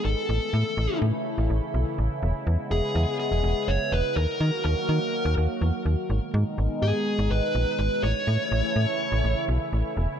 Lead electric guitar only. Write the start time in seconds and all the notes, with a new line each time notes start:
0.05 A4
2.71 G#4
3.20 G#4
3.68 C#5
3.92 B4
4.16 A#4
4.65 A#4
6.82 G#4
7.31 B4
7.79 B4
8.03 C#5